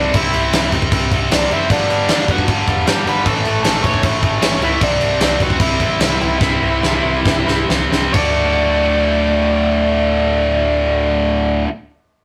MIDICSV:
0, 0, Header, 1, 5, 480
1, 0, Start_track
1, 0, Key_signature, 2, "major"
1, 0, Tempo, 390117
1, 171, Time_signature, 4, 2, 24, 8
1, 6412, Tempo, 403226
1, 8332, Tempo, 436999
1, 9772, Tempo, 457666
1, 14082, End_track
2, 0, Start_track
2, 0, Title_t, "Lead electric guitar"
2, 0, Program_c, 0, 29
2, 0, Note_on_c, 0, 62, 67
2, 0, Note_on_c, 0, 74, 92
2, 146, Note_off_c, 0, 62, 0
2, 169, Note_on_c, 0, 64, 67
2, 182, Note_off_c, 0, 74, 0
2, 195, Note_on_c, 0, 76, 79
2, 841, Note_off_c, 0, 64, 0
2, 854, Note_off_c, 0, 76, 0
2, 1626, Note_on_c, 0, 62, 69
2, 1642, Note_on_c, 0, 74, 85
2, 1843, Note_off_c, 0, 62, 0
2, 1862, Note_on_c, 0, 64, 69
2, 1872, Note_on_c, 0, 76, 95
2, 1873, Note_off_c, 0, 74, 0
2, 2080, Note_off_c, 0, 64, 0
2, 2085, Note_off_c, 0, 76, 0
2, 2099, Note_on_c, 0, 74, 81
2, 2112, Note_on_c, 0, 62, 62
2, 2549, Note_off_c, 0, 62, 0
2, 2583, Note_off_c, 0, 74, 0
2, 2597, Note_on_c, 0, 74, 91
2, 2608, Note_on_c, 0, 62, 75
2, 2814, Note_off_c, 0, 62, 0
2, 2831, Note_off_c, 0, 74, 0
2, 2836, Note_on_c, 0, 78, 92
2, 2850, Note_on_c, 0, 66, 78
2, 3048, Note_off_c, 0, 78, 0
2, 3055, Note_off_c, 0, 66, 0
2, 3547, Note_on_c, 0, 79, 77
2, 3566, Note_on_c, 0, 67, 58
2, 3773, Note_off_c, 0, 67, 0
2, 3786, Note_off_c, 0, 79, 0
2, 3799, Note_on_c, 0, 83, 92
2, 3814, Note_on_c, 0, 71, 73
2, 4002, Note_off_c, 0, 83, 0
2, 4002, Note_on_c, 0, 81, 88
2, 4017, Note_off_c, 0, 71, 0
2, 4037, Note_on_c, 0, 69, 74
2, 4452, Note_off_c, 0, 81, 0
2, 4467, Note_on_c, 0, 81, 89
2, 4471, Note_off_c, 0, 69, 0
2, 4493, Note_on_c, 0, 69, 80
2, 4705, Note_off_c, 0, 81, 0
2, 4709, Note_on_c, 0, 85, 91
2, 4715, Note_off_c, 0, 69, 0
2, 4734, Note_on_c, 0, 73, 83
2, 4943, Note_off_c, 0, 85, 0
2, 4956, Note_off_c, 0, 73, 0
2, 5440, Note_on_c, 0, 61, 75
2, 5445, Note_on_c, 0, 73, 87
2, 5669, Note_off_c, 0, 61, 0
2, 5691, Note_on_c, 0, 64, 87
2, 5699, Note_off_c, 0, 73, 0
2, 5699, Note_on_c, 0, 76, 82
2, 5915, Note_off_c, 0, 64, 0
2, 5929, Note_on_c, 0, 62, 78
2, 5935, Note_off_c, 0, 76, 0
2, 5940, Note_on_c, 0, 74, 99
2, 6377, Note_off_c, 0, 62, 0
2, 6419, Note_off_c, 0, 74, 0
2, 6424, Note_on_c, 0, 62, 72
2, 6433, Note_on_c, 0, 74, 97
2, 6636, Note_off_c, 0, 62, 0
2, 6662, Note_on_c, 0, 66, 89
2, 6663, Note_off_c, 0, 74, 0
2, 6673, Note_on_c, 0, 78, 114
2, 6873, Note_off_c, 0, 66, 0
2, 6873, Note_on_c, 0, 64, 73
2, 6891, Note_off_c, 0, 78, 0
2, 6891, Note_on_c, 0, 76, 95
2, 7787, Note_off_c, 0, 64, 0
2, 7839, Note_off_c, 0, 76, 0
2, 7841, Note_on_c, 0, 64, 71
2, 7853, Note_on_c, 0, 76, 92
2, 9234, Note_off_c, 0, 64, 0
2, 9240, Note_off_c, 0, 76, 0
2, 9765, Note_on_c, 0, 74, 82
2, 13434, Note_off_c, 0, 74, 0
2, 14082, End_track
3, 0, Start_track
3, 0, Title_t, "Distorted electric guitar"
3, 0, Program_c, 1, 30
3, 0, Note_on_c, 1, 48, 85
3, 0, Note_on_c, 1, 55, 94
3, 0, Note_on_c, 1, 60, 85
3, 166, Note_off_c, 1, 48, 0
3, 178, Note_off_c, 1, 60, 0
3, 179, Note_off_c, 1, 55, 0
3, 181, Note_on_c, 1, 48, 102
3, 184, Note_on_c, 1, 55, 98
3, 193, Note_on_c, 1, 60, 123
3, 404, Note_off_c, 1, 48, 0
3, 414, Note_off_c, 1, 60, 0
3, 417, Note_off_c, 1, 55, 0
3, 419, Note_on_c, 1, 48, 93
3, 422, Note_on_c, 1, 55, 90
3, 428, Note_on_c, 1, 60, 99
3, 637, Note_off_c, 1, 48, 0
3, 647, Note_off_c, 1, 60, 0
3, 652, Note_on_c, 1, 48, 82
3, 658, Note_off_c, 1, 55, 0
3, 662, Note_on_c, 1, 60, 92
3, 663, Note_on_c, 1, 55, 94
3, 883, Note_off_c, 1, 48, 0
3, 889, Note_off_c, 1, 60, 0
3, 897, Note_off_c, 1, 55, 0
3, 898, Note_on_c, 1, 48, 104
3, 902, Note_on_c, 1, 55, 97
3, 904, Note_on_c, 1, 60, 109
3, 1124, Note_off_c, 1, 48, 0
3, 1125, Note_off_c, 1, 55, 0
3, 1129, Note_off_c, 1, 60, 0
3, 1139, Note_on_c, 1, 48, 98
3, 1140, Note_on_c, 1, 55, 99
3, 1144, Note_on_c, 1, 60, 105
3, 1379, Note_off_c, 1, 48, 0
3, 1380, Note_off_c, 1, 55, 0
3, 1386, Note_off_c, 1, 60, 0
3, 1394, Note_on_c, 1, 48, 88
3, 1395, Note_on_c, 1, 55, 100
3, 1401, Note_on_c, 1, 60, 95
3, 1603, Note_off_c, 1, 48, 0
3, 1608, Note_off_c, 1, 55, 0
3, 1611, Note_off_c, 1, 60, 0
3, 1618, Note_on_c, 1, 48, 94
3, 1622, Note_on_c, 1, 55, 96
3, 1625, Note_on_c, 1, 60, 105
3, 1853, Note_off_c, 1, 48, 0
3, 1853, Note_off_c, 1, 55, 0
3, 1854, Note_off_c, 1, 60, 0
3, 1868, Note_on_c, 1, 48, 76
3, 1868, Note_on_c, 1, 55, 78
3, 1869, Note_on_c, 1, 60, 95
3, 2085, Note_off_c, 1, 48, 0
3, 2085, Note_off_c, 1, 55, 0
3, 2086, Note_off_c, 1, 60, 0
3, 2099, Note_on_c, 1, 43, 98
3, 2101, Note_on_c, 1, 50, 90
3, 2105, Note_on_c, 1, 55, 111
3, 2309, Note_off_c, 1, 43, 0
3, 2311, Note_off_c, 1, 50, 0
3, 2319, Note_off_c, 1, 55, 0
3, 2324, Note_on_c, 1, 43, 96
3, 2326, Note_on_c, 1, 50, 100
3, 2334, Note_on_c, 1, 55, 96
3, 2566, Note_off_c, 1, 43, 0
3, 2575, Note_off_c, 1, 50, 0
3, 2575, Note_off_c, 1, 55, 0
3, 2581, Note_on_c, 1, 43, 88
3, 2590, Note_on_c, 1, 50, 98
3, 2590, Note_on_c, 1, 55, 98
3, 2814, Note_off_c, 1, 43, 0
3, 2816, Note_off_c, 1, 50, 0
3, 2821, Note_off_c, 1, 55, 0
3, 2828, Note_on_c, 1, 43, 88
3, 2831, Note_on_c, 1, 50, 98
3, 2836, Note_on_c, 1, 55, 123
3, 3036, Note_off_c, 1, 43, 0
3, 3038, Note_off_c, 1, 50, 0
3, 3041, Note_off_c, 1, 55, 0
3, 3051, Note_on_c, 1, 43, 91
3, 3052, Note_on_c, 1, 50, 90
3, 3056, Note_on_c, 1, 55, 91
3, 3283, Note_off_c, 1, 43, 0
3, 3285, Note_off_c, 1, 50, 0
3, 3286, Note_off_c, 1, 55, 0
3, 3297, Note_on_c, 1, 43, 102
3, 3300, Note_on_c, 1, 50, 106
3, 3300, Note_on_c, 1, 55, 105
3, 3504, Note_off_c, 1, 43, 0
3, 3510, Note_off_c, 1, 50, 0
3, 3512, Note_off_c, 1, 55, 0
3, 3519, Note_on_c, 1, 43, 89
3, 3525, Note_on_c, 1, 50, 95
3, 3527, Note_on_c, 1, 55, 118
3, 3752, Note_off_c, 1, 43, 0
3, 3758, Note_off_c, 1, 50, 0
3, 3767, Note_off_c, 1, 55, 0
3, 3767, Note_on_c, 1, 43, 83
3, 3772, Note_on_c, 1, 50, 94
3, 3782, Note_on_c, 1, 55, 98
3, 3995, Note_off_c, 1, 43, 0
3, 3997, Note_off_c, 1, 50, 0
3, 4002, Note_off_c, 1, 55, 0
3, 4004, Note_on_c, 1, 45, 91
3, 4006, Note_on_c, 1, 52, 102
3, 4013, Note_on_c, 1, 57, 96
3, 4236, Note_off_c, 1, 45, 0
3, 4242, Note_off_c, 1, 57, 0
3, 4249, Note_off_c, 1, 52, 0
3, 4251, Note_on_c, 1, 45, 84
3, 4254, Note_on_c, 1, 52, 99
3, 4257, Note_on_c, 1, 57, 107
3, 4466, Note_off_c, 1, 45, 0
3, 4474, Note_off_c, 1, 57, 0
3, 4481, Note_on_c, 1, 45, 94
3, 4485, Note_off_c, 1, 52, 0
3, 4489, Note_on_c, 1, 57, 110
3, 4490, Note_on_c, 1, 52, 97
3, 4713, Note_off_c, 1, 45, 0
3, 4720, Note_off_c, 1, 57, 0
3, 4728, Note_on_c, 1, 45, 95
3, 4731, Note_off_c, 1, 52, 0
3, 4735, Note_on_c, 1, 57, 108
3, 4736, Note_on_c, 1, 52, 114
3, 4957, Note_off_c, 1, 45, 0
3, 4966, Note_off_c, 1, 57, 0
3, 4968, Note_off_c, 1, 52, 0
3, 4971, Note_on_c, 1, 45, 92
3, 4973, Note_on_c, 1, 52, 100
3, 4981, Note_on_c, 1, 57, 98
3, 5193, Note_off_c, 1, 45, 0
3, 5195, Note_off_c, 1, 57, 0
3, 5202, Note_off_c, 1, 52, 0
3, 5207, Note_on_c, 1, 45, 103
3, 5207, Note_on_c, 1, 52, 109
3, 5210, Note_on_c, 1, 57, 108
3, 5436, Note_off_c, 1, 45, 0
3, 5444, Note_off_c, 1, 57, 0
3, 5450, Note_off_c, 1, 52, 0
3, 5451, Note_on_c, 1, 45, 102
3, 5455, Note_on_c, 1, 52, 93
3, 5459, Note_on_c, 1, 57, 90
3, 5685, Note_off_c, 1, 45, 0
3, 5693, Note_off_c, 1, 57, 0
3, 5699, Note_off_c, 1, 52, 0
3, 5700, Note_on_c, 1, 45, 87
3, 5704, Note_on_c, 1, 52, 88
3, 5708, Note_on_c, 1, 57, 88
3, 5921, Note_off_c, 1, 45, 0
3, 5925, Note_off_c, 1, 57, 0
3, 5930, Note_off_c, 1, 52, 0
3, 5930, Note_on_c, 1, 48, 97
3, 5935, Note_on_c, 1, 55, 101
3, 5937, Note_on_c, 1, 60, 111
3, 6172, Note_off_c, 1, 48, 0
3, 6177, Note_on_c, 1, 48, 95
3, 6180, Note_off_c, 1, 60, 0
3, 6182, Note_off_c, 1, 55, 0
3, 6185, Note_on_c, 1, 60, 103
3, 6187, Note_on_c, 1, 55, 114
3, 6415, Note_off_c, 1, 48, 0
3, 6420, Note_off_c, 1, 55, 0
3, 6420, Note_on_c, 1, 48, 99
3, 6423, Note_off_c, 1, 60, 0
3, 6425, Note_on_c, 1, 55, 93
3, 6428, Note_on_c, 1, 60, 103
3, 6649, Note_off_c, 1, 48, 0
3, 6654, Note_on_c, 1, 48, 100
3, 6659, Note_off_c, 1, 55, 0
3, 6663, Note_off_c, 1, 60, 0
3, 6663, Note_on_c, 1, 55, 121
3, 6668, Note_on_c, 1, 60, 115
3, 6875, Note_off_c, 1, 48, 0
3, 6881, Note_off_c, 1, 55, 0
3, 6884, Note_off_c, 1, 60, 0
3, 6889, Note_on_c, 1, 48, 100
3, 6896, Note_on_c, 1, 55, 105
3, 6899, Note_on_c, 1, 60, 110
3, 7114, Note_off_c, 1, 48, 0
3, 7115, Note_off_c, 1, 55, 0
3, 7126, Note_off_c, 1, 60, 0
3, 7128, Note_on_c, 1, 48, 91
3, 7129, Note_on_c, 1, 55, 97
3, 7140, Note_on_c, 1, 60, 105
3, 7335, Note_off_c, 1, 48, 0
3, 7340, Note_off_c, 1, 55, 0
3, 7349, Note_on_c, 1, 48, 81
3, 7352, Note_off_c, 1, 60, 0
3, 7355, Note_on_c, 1, 55, 101
3, 7366, Note_on_c, 1, 60, 100
3, 7582, Note_off_c, 1, 48, 0
3, 7591, Note_off_c, 1, 60, 0
3, 7592, Note_off_c, 1, 55, 0
3, 7596, Note_on_c, 1, 48, 91
3, 7605, Note_on_c, 1, 60, 99
3, 7606, Note_on_c, 1, 55, 101
3, 7828, Note_off_c, 1, 48, 0
3, 7830, Note_off_c, 1, 55, 0
3, 7836, Note_off_c, 1, 60, 0
3, 7843, Note_on_c, 1, 48, 97
3, 7844, Note_on_c, 1, 55, 108
3, 7850, Note_on_c, 1, 60, 102
3, 8069, Note_off_c, 1, 48, 0
3, 8072, Note_off_c, 1, 60, 0
3, 8074, Note_off_c, 1, 55, 0
3, 8083, Note_on_c, 1, 48, 100
3, 8086, Note_on_c, 1, 60, 96
3, 8088, Note_on_c, 1, 55, 111
3, 8307, Note_off_c, 1, 55, 0
3, 8308, Note_off_c, 1, 48, 0
3, 8312, Note_off_c, 1, 60, 0
3, 8322, Note_on_c, 1, 48, 92
3, 8322, Note_on_c, 1, 55, 105
3, 8326, Note_on_c, 1, 60, 101
3, 8541, Note_off_c, 1, 48, 0
3, 8547, Note_off_c, 1, 55, 0
3, 8549, Note_off_c, 1, 60, 0
3, 8554, Note_on_c, 1, 48, 105
3, 8560, Note_on_c, 1, 55, 112
3, 8562, Note_on_c, 1, 60, 95
3, 8796, Note_off_c, 1, 48, 0
3, 8797, Note_off_c, 1, 55, 0
3, 8800, Note_off_c, 1, 60, 0
3, 8809, Note_on_c, 1, 48, 92
3, 8810, Note_on_c, 1, 55, 111
3, 8814, Note_on_c, 1, 60, 106
3, 9019, Note_off_c, 1, 48, 0
3, 9026, Note_off_c, 1, 55, 0
3, 9030, Note_off_c, 1, 60, 0
3, 9033, Note_on_c, 1, 48, 96
3, 9039, Note_on_c, 1, 55, 102
3, 9043, Note_on_c, 1, 60, 106
3, 9269, Note_off_c, 1, 48, 0
3, 9273, Note_off_c, 1, 55, 0
3, 9274, Note_off_c, 1, 60, 0
3, 9282, Note_on_c, 1, 48, 94
3, 9287, Note_on_c, 1, 55, 101
3, 9287, Note_on_c, 1, 60, 112
3, 9507, Note_off_c, 1, 48, 0
3, 9510, Note_off_c, 1, 55, 0
3, 9516, Note_off_c, 1, 60, 0
3, 9520, Note_on_c, 1, 48, 81
3, 9524, Note_on_c, 1, 55, 91
3, 9529, Note_on_c, 1, 60, 91
3, 9750, Note_off_c, 1, 48, 0
3, 9754, Note_on_c, 1, 38, 93
3, 9757, Note_off_c, 1, 55, 0
3, 9760, Note_off_c, 1, 60, 0
3, 9767, Note_on_c, 1, 45, 95
3, 9780, Note_on_c, 1, 50, 102
3, 9786, Note_on_c, 1, 57, 92
3, 9800, Note_on_c, 1, 66, 111
3, 13466, Note_off_c, 1, 38, 0
3, 13478, Note_off_c, 1, 45, 0
3, 13491, Note_off_c, 1, 50, 0
3, 13497, Note_off_c, 1, 57, 0
3, 13511, Note_off_c, 1, 66, 0
3, 14082, End_track
4, 0, Start_track
4, 0, Title_t, "Picked electric bass"
4, 0, Program_c, 2, 34
4, 166, Note_on_c, 2, 36, 98
4, 338, Note_off_c, 2, 36, 0
4, 405, Note_on_c, 2, 36, 105
4, 577, Note_off_c, 2, 36, 0
4, 652, Note_on_c, 2, 36, 104
4, 821, Note_off_c, 2, 36, 0
4, 890, Note_on_c, 2, 36, 93
4, 1060, Note_off_c, 2, 36, 0
4, 1133, Note_on_c, 2, 36, 101
4, 1302, Note_off_c, 2, 36, 0
4, 1372, Note_on_c, 2, 36, 91
4, 1541, Note_off_c, 2, 36, 0
4, 1601, Note_on_c, 2, 36, 105
4, 1774, Note_off_c, 2, 36, 0
4, 1849, Note_on_c, 2, 30, 85
4, 2019, Note_off_c, 2, 30, 0
4, 2093, Note_on_c, 2, 31, 96
4, 2262, Note_off_c, 2, 31, 0
4, 2320, Note_on_c, 2, 31, 87
4, 2494, Note_off_c, 2, 31, 0
4, 2569, Note_on_c, 2, 31, 104
4, 2739, Note_off_c, 2, 31, 0
4, 2811, Note_on_c, 2, 31, 88
4, 2980, Note_off_c, 2, 31, 0
4, 3043, Note_on_c, 2, 31, 96
4, 3216, Note_off_c, 2, 31, 0
4, 3291, Note_on_c, 2, 28, 84
4, 3461, Note_off_c, 2, 28, 0
4, 3516, Note_on_c, 2, 31, 101
4, 3690, Note_off_c, 2, 31, 0
4, 3762, Note_on_c, 2, 31, 85
4, 3935, Note_off_c, 2, 31, 0
4, 4014, Note_on_c, 2, 33, 109
4, 4182, Note_off_c, 2, 33, 0
4, 4248, Note_on_c, 2, 33, 97
4, 4419, Note_off_c, 2, 33, 0
4, 4483, Note_on_c, 2, 33, 108
4, 4655, Note_off_c, 2, 33, 0
4, 4725, Note_on_c, 2, 33, 101
4, 4897, Note_off_c, 2, 33, 0
4, 4961, Note_on_c, 2, 33, 97
4, 5134, Note_off_c, 2, 33, 0
4, 5194, Note_on_c, 2, 33, 89
4, 5369, Note_off_c, 2, 33, 0
4, 5420, Note_on_c, 2, 33, 108
4, 5600, Note_off_c, 2, 33, 0
4, 5654, Note_on_c, 2, 37, 94
4, 5836, Note_off_c, 2, 37, 0
4, 5924, Note_on_c, 2, 36, 100
4, 6096, Note_off_c, 2, 36, 0
4, 6140, Note_on_c, 2, 36, 92
4, 6321, Note_off_c, 2, 36, 0
4, 6389, Note_on_c, 2, 36, 93
4, 6562, Note_off_c, 2, 36, 0
4, 6642, Note_on_c, 2, 36, 82
4, 6809, Note_off_c, 2, 36, 0
4, 6872, Note_on_c, 2, 36, 101
4, 7042, Note_off_c, 2, 36, 0
4, 7112, Note_on_c, 2, 33, 92
4, 7282, Note_off_c, 2, 33, 0
4, 7345, Note_on_c, 2, 36, 112
4, 7518, Note_off_c, 2, 36, 0
4, 7598, Note_on_c, 2, 36, 87
4, 7769, Note_off_c, 2, 36, 0
4, 7832, Note_on_c, 2, 36, 104
4, 8007, Note_off_c, 2, 36, 0
4, 8077, Note_on_c, 2, 36, 94
4, 8254, Note_off_c, 2, 36, 0
4, 8327, Note_on_c, 2, 36, 99
4, 8492, Note_off_c, 2, 36, 0
4, 8562, Note_on_c, 2, 36, 90
4, 8728, Note_off_c, 2, 36, 0
4, 8804, Note_on_c, 2, 36, 96
4, 8970, Note_off_c, 2, 36, 0
4, 9032, Note_on_c, 2, 36, 83
4, 9204, Note_off_c, 2, 36, 0
4, 9272, Note_on_c, 2, 36, 102
4, 9447, Note_off_c, 2, 36, 0
4, 9518, Note_on_c, 2, 36, 81
4, 9695, Note_off_c, 2, 36, 0
4, 9781, Note_on_c, 2, 26, 100
4, 13451, Note_off_c, 2, 26, 0
4, 14082, End_track
5, 0, Start_track
5, 0, Title_t, "Drums"
5, 170, Note_on_c, 9, 49, 95
5, 173, Note_on_c, 9, 36, 120
5, 293, Note_off_c, 9, 49, 0
5, 296, Note_off_c, 9, 36, 0
5, 411, Note_on_c, 9, 49, 70
5, 534, Note_off_c, 9, 49, 0
5, 650, Note_on_c, 9, 49, 104
5, 659, Note_on_c, 9, 38, 118
5, 773, Note_off_c, 9, 49, 0
5, 782, Note_off_c, 9, 38, 0
5, 888, Note_on_c, 9, 49, 80
5, 890, Note_on_c, 9, 36, 87
5, 1011, Note_off_c, 9, 36, 0
5, 1011, Note_off_c, 9, 49, 0
5, 1011, Note_on_c, 9, 36, 90
5, 1131, Note_off_c, 9, 36, 0
5, 1131, Note_on_c, 9, 36, 117
5, 1132, Note_on_c, 9, 49, 97
5, 1254, Note_off_c, 9, 36, 0
5, 1255, Note_off_c, 9, 49, 0
5, 1371, Note_on_c, 9, 49, 75
5, 1372, Note_on_c, 9, 36, 88
5, 1494, Note_off_c, 9, 49, 0
5, 1495, Note_off_c, 9, 36, 0
5, 1616, Note_on_c, 9, 49, 99
5, 1625, Note_on_c, 9, 38, 115
5, 1739, Note_off_c, 9, 49, 0
5, 1748, Note_off_c, 9, 38, 0
5, 1859, Note_on_c, 9, 49, 65
5, 1982, Note_off_c, 9, 49, 0
5, 2093, Note_on_c, 9, 36, 126
5, 2098, Note_on_c, 9, 49, 88
5, 2216, Note_off_c, 9, 36, 0
5, 2221, Note_off_c, 9, 49, 0
5, 2338, Note_on_c, 9, 49, 73
5, 2461, Note_off_c, 9, 49, 0
5, 2565, Note_on_c, 9, 49, 96
5, 2573, Note_on_c, 9, 38, 115
5, 2688, Note_off_c, 9, 49, 0
5, 2696, Note_off_c, 9, 38, 0
5, 2810, Note_on_c, 9, 36, 103
5, 2812, Note_on_c, 9, 49, 68
5, 2933, Note_off_c, 9, 36, 0
5, 2933, Note_on_c, 9, 36, 87
5, 2935, Note_off_c, 9, 49, 0
5, 3051, Note_on_c, 9, 49, 95
5, 3052, Note_off_c, 9, 36, 0
5, 3052, Note_on_c, 9, 36, 118
5, 3174, Note_off_c, 9, 49, 0
5, 3176, Note_off_c, 9, 36, 0
5, 3292, Note_on_c, 9, 36, 86
5, 3293, Note_on_c, 9, 49, 58
5, 3415, Note_off_c, 9, 36, 0
5, 3416, Note_off_c, 9, 49, 0
5, 3530, Note_on_c, 9, 49, 91
5, 3539, Note_on_c, 9, 38, 127
5, 3653, Note_off_c, 9, 49, 0
5, 3662, Note_off_c, 9, 38, 0
5, 3779, Note_on_c, 9, 49, 67
5, 3902, Note_off_c, 9, 49, 0
5, 4010, Note_on_c, 9, 36, 122
5, 4014, Note_on_c, 9, 49, 94
5, 4133, Note_off_c, 9, 36, 0
5, 4137, Note_off_c, 9, 49, 0
5, 4248, Note_on_c, 9, 49, 67
5, 4371, Note_off_c, 9, 49, 0
5, 4483, Note_on_c, 9, 49, 102
5, 4492, Note_on_c, 9, 38, 120
5, 4606, Note_off_c, 9, 49, 0
5, 4615, Note_off_c, 9, 38, 0
5, 4722, Note_on_c, 9, 49, 76
5, 4724, Note_on_c, 9, 36, 88
5, 4843, Note_off_c, 9, 36, 0
5, 4843, Note_on_c, 9, 36, 74
5, 4845, Note_off_c, 9, 49, 0
5, 4957, Note_on_c, 9, 49, 101
5, 4963, Note_off_c, 9, 36, 0
5, 4963, Note_on_c, 9, 36, 106
5, 5080, Note_off_c, 9, 49, 0
5, 5086, Note_off_c, 9, 36, 0
5, 5200, Note_on_c, 9, 49, 72
5, 5202, Note_on_c, 9, 36, 98
5, 5323, Note_off_c, 9, 49, 0
5, 5325, Note_off_c, 9, 36, 0
5, 5439, Note_on_c, 9, 49, 110
5, 5447, Note_on_c, 9, 38, 125
5, 5562, Note_off_c, 9, 49, 0
5, 5571, Note_off_c, 9, 38, 0
5, 5684, Note_on_c, 9, 49, 73
5, 5807, Note_off_c, 9, 49, 0
5, 5922, Note_on_c, 9, 36, 127
5, 5923, Note_on_c, 9, 49, 98
5, 6045, Note_off_c, 9, 36, 0
5, 6046, Note_off_c, 9, 49, 0
5, 6161, Note_on_c, 9, 49, 74
5, 6284, Note_off_c, 9, 49, 0
5, 6404, Note_on_c, 9, 49, 94
5, 6412, Note_on_c, 9, 38, 127
5, 6523, Note_off_c, 9, 49, 0
5, 6532, Note_off_c, 9, 38, 0
5, 6637, Note_on_c, 9, 49, 64
5, 6639, Note_on_c, 9, 36, 94
5, 6756, Note_off_c, 9, 49, 0
5, 6757, Note_off_c, 9, 36, 0
5, 6757, Note_on_c, 9, 36, 83
5, 6872, Note_on_c, 9, 49, 99
5, 6874, Note_off_c, 9, 36, 0
5, 6874, Note_on_c, 9, 36, 119
5, 6991, Note_off_c, 9, 49, 0
5, 6993, Note_off_c, 9, 36, 0
5, 7113, Note_on_c, 9, 36, 86
5, 7116, Note_on_c, 9, 49, 66
5, 7232, Note_off_c, 9, 36, 0
5, 7235, Note_off_c, 9, 49, 0
5, 7353, Note_on_c, 9, 49, 97
5, 7362, Note_on_c, 9, 38, 127
5, 7472, Note_off_c, 9, 49, 0
5, 7481, Note_off_c, 9, 38, 0
5, 7603, Note_on_c, 9, 49, 60
5, 7722, Note_off_c, 9, 49, 0
5, 7838, Note_on_c, 9, 36, 127
5, 7842, Note_on_c, 9, 38, 78
5, 7957, Note_off_c, 9, 36, 0
5, 7961, Note_off_c, 9, 38, 0
5, 8342, Note_on_c, 9, 38, 90
5, 8452, Note_off_c, 9, 38, 0
5, 8805, Note_on_c, 9, 36, 127
5, 8818, Note_on_c, 9, 38, 108
5, 8915, Note_off_c, 9, 36, 0
5, 8928, Note_off_c, 9, 38, 0
5, 9055, Note_on_c, 9, 38, 82
5, 9164, Note_off_c, 9, 38, 0
5, 9296, Note_on_c, 9, 38, 113
5, 9405, Note_off_c, 9, 38, 0
5, 9542, Note_on_c, 9, 38, 106
5, 9652, Note_off_c, 9, 38, 0
5, 9774, Note_on_c, 9, 49, 102
5, 9778, Note_on_c, 9, 36, 109
5, 9879, Note_off_c, 9, 49, 0
5, 9883, Note_off_c, 9, 36, 0
5, 14082, End_track
0, 0, End_of_file